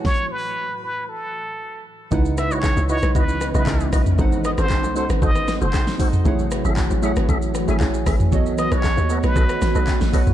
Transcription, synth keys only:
\new Staff \with { instrumentName = "Synth keys" } { \time 4/4 \key cis \minor \tempo 4 = 116 r1 | <cis gis dis' e' b' fis''>4~ <cis gis dis' e' b' fis''>16 r16 <cis gis dis' e' b' dis''>4 r16 <cis gis e' b' dis'' e''>4 r16 | <gis dis' a' bis' fis''>4~ <gis dis' a' bis' fis''>16 r16 <gis dis' a' bis' fis''>4. r8 <gis dis' a' bis' fis''>8 | <a e' gis' cis'' fis''>4~ <a e' gis' cis'' fis''>16 r16 <a e' gis' cis'' fis''>4 r16 <a e' gis' cis'' gis''>4 r16 |
<b fis' a' cis'' dis''>4~ <b fis' a' cis'' dis''>16 r16 <b fis' a' cis'' fis''>4. r8 <b fis' a' cis'' fis''>8 | }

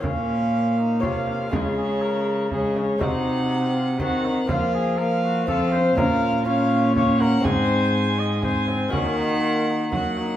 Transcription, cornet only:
\new Staff \with { instrumentName = "Cornet" } { \time 3/4 \key bes \minor \tempo 4 = 121 des'4. ees'8 f'4 | f'8 aes'8 bes'4 aes'8 des'8 | ees'4. f'8 ges'8 ees'8 | f'8 aes'8 bes'8 ges'8 a'8 c''8 |
bes'4 des''4 des''8 bes'8 | c''4. ees''8 c''8 c'8 | des'8 ees'8 f'8 ees'8 ges'8 ees'8 | }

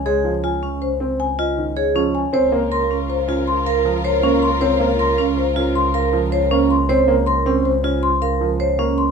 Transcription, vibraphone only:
\new Staff \with { instrumentName = "Vibraphone" } { \time 6/4 \key bes \minor \tempo 4 = 158 aes'8 r8 f'8 des'8 r4. f'8 r8 aes'8 des'8 r8 | c''8 r8 bes'8 des'8 r8 f'8 r8 bes'8 r8 c''8 des'8 r8 | c''8 r8 bes'8 des'8 r8 f'8 r8 bes'8 r8 c''8 des'8 r8 | c''8 r8 bes'8 des'8 r8 f'8 r8 bes'8 r8 c''8 des'8 r8 | }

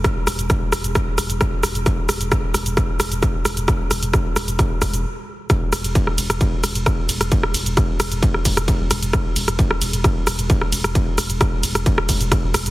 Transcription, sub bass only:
\new Staff \with { instrumentName = "Sub bass" } { \clef bass \time 4/4 \tempo 4 = 132 r16 e,,16 e,,16 e,,16 r16 e,,16 e,,16 e,,16 r16 e,,16 e,,16 e,,16 r16 e,,16 e,,16 e,,16 | r16 e,,16 e,,16 e,,16 r16 e,,16 e,,16 e,,16 r16 e,,16 e,,16 e,,16 r16 e,,16 e,,16 e,,16 | r16 e,,16 e,,16 e,,16 r16 e,,16 e,,16 e,,16 r16 e,,16 e,,16 e,,16 r4 | r16 e,,16 e,,16 e,,16 r16 e,,16 e,,16 e,,16 r16 e,,16 e,,16 e,,16 r16 e,,16 e,,16 e,,16 |
r16 e,,16 e,,16 e,,16 r16 e,,16 e,,16 e,,16 r16 e,,16 e,,16 e,,16 r16 e,,16 e,,16 e,,16 | r16 e,,16 e,,16 e,,16 r16 e,,16 e,,16 e,,16 r16 e,,16 e,,16 e,,16 r16 e,,16 e,,16 e,,16 | r16 e,,16 e,,16 e,,16 r16 e,,16 e,,16 e,,16 r16 e,,16 e,,16 e,,16 r16 e,,16 e,,16 e,,16 | }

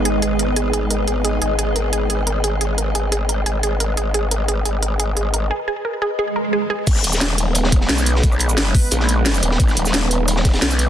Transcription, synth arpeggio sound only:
\new Staff \with { instrumentName = "Synth arpeggio sound" } { \time 4/4 \key gis \minor \tempo 4 = 176 gis'8 gis'8 ais'8 gis'8 gis'8 ais'8 gis'8 gis'8 | gis'8 gis'8 ais'8 gis'8 gis'8 ais'8 gis'8 gis'8 | ais'8 gis'8 gis'8 ais'8 gis'8 gis'8 ais'8 gis'8 | gis'8 ais'8 gis'8 gis'8 ais'8 gis'8 gis'8 ais'8 |
gis'8 gis'8 ais'8 gis'8 gis'8 ais'8 gis'8 gis'8 | r1 | r1 | r1 | }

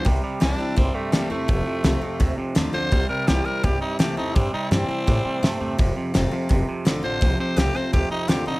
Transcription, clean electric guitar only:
\new Staff \with { instrumentName = "Clean electric guitar" } { \clef bass \time 4/4 \key c \mixolydian \tempo 4 = 168 <c g>8 <c g>8 <c g>8 <c g>8 <c g>8 <c g>8 <c a>8 <c a>8 | <f, c>8 <f, c>8 <f, c>8 <f, c>8 <f, c>8 <f, c>8 <f, d>8 <f, d>8 | <c g>8 <c g>8 <c g>8 <c g>8 <c g>8 <c g>8 <c a>8 <c a>8 | <c g>8 <c g>8 <c g>8 <c g>8 <c g>8 <c g>8 <c a>8 <c a>8 |
<f, c>8 <f, c>8 <f, c>8 <f, c>8 <f, c>8 <f, c>8 <f, d>8 <f, d>8 | <f, c>8 <f, c>8 <f, c>8 <f, c>8 <f, c>8 <f, c>8 <f, d>8 <f, d>8 | }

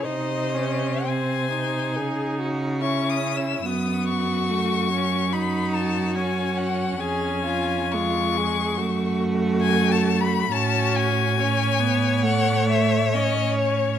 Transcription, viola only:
\new Staff \with { instrumentName = "Viola" } { \time 4/4 \key fis \dorian \tempo 4 = 70 dis'8 cis'8 bis8 dis'4. cis'4 | b4 a8 cis'8 dis'4 cis'4 | cis'4 gis4 a2 | cis'4 cis'8 b8 a4 cis'4 | }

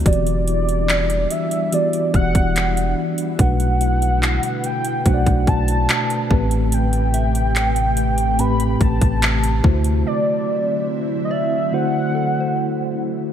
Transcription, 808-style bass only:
\new Staff \with { instrumentName = "808-style bass" } { \clef bass \time 4/4 \key e \minor \tempo 4 = 72 e,,4. r4 e,,16 e,,8. r8 | b,,4~ b,,16 r8. b,,16 b,,16 b,,8 r8 a,,8~ | a,,2~ a,,8 a,,16 a,,8. d,8 | r1 | }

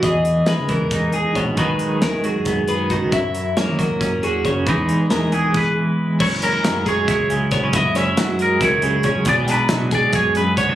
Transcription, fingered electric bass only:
\new Staff \with { instrumentName = "Fingered electric bass" } { \clef bass \time 7/8 \key fis \mixolydian \tempo 4 = 136 e,4 e16 cis8 e,8. dis,8 ais,,8 | dis,8 r8 dis,16 gis,,8 fis,4~ fis,16 cis,8 | fis,4 fis16 dis8 fis,8. e,8 fis,8 | e,8 r8 e,16 dis,8 b,,16 r4. |
fis,,4 fis,4 cis,4 ais,,16 fis,,16 | fis,,4 fis,4 cis,4 ais,,16 fis,16 | b,,4 b,4 fis,4 d,16 b,,16 | }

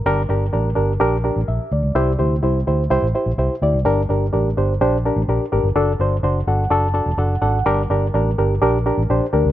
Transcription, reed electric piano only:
<<
  \new Staff \with { instrumentName = "Reed electric piano" } { \time 4/4 \key g \dorian \tempo 4 = 126 << { r2. e''8 d''8~ | d''8 r2. r8 | r1 | r4. fis''8 a''8 a''8 fis''8 fis''8 |
r1 | } \\ { <d' g' bes'>8 <d' g' bes'>8 <d' g' bes'>8 <d' g' bes'>8 <d' g' bes'>8 <d' g' bes'>8 r4 | <e' g' c''>8 <e' g' c''>8 <e' g' c''>8 <e' g' c''>8 <e' g' c''>8 <e' g' c''>8 <e' g' c''>8 <e' g' d''>8 | <d' g' bes'>8 <d' g' bes'>8 <d' g' bes'>8 <d' g' c''>8 <d' g' c''>8 <d' g' bes'>8 <d' g' bes'>8 <d' g' bes'>8 | <d' fis' a'>8 <d' fis' c''>8 <d' fis' c''>8 <d' fis' a'>8 <d' fis' a'>8 <d' fis' a'>8 <d' fis' a'>8 <d' fis' a'>8 |
<d' g' bes'>8 <d' g' bes'>8 <d' g' bes'>8 <d' g' bes'>8 <d' g' bes'>8 <d' g' bes'>8 <d' g' c''>8 <d' g' bes'>8 | } >> }
  \new Staff \with { instrumentName = "Reed electric piano" } { \clef bass \time 4/4 \key g \dorian g,4. r2 r8 | c4. r2 r8 | g,4. r2 r8 | r1 |
g,4. r2 r8 | }
>>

